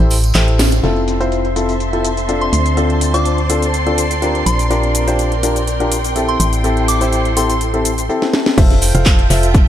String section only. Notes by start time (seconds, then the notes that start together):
0.84 C4
1.01 C5 E5
1.60 A5
3.31 D5
4.62 A#4
5.34 G5
6.40 E4
6.61 A4
7.02 C5
8.58 F4
8.83 E5
8.95 A5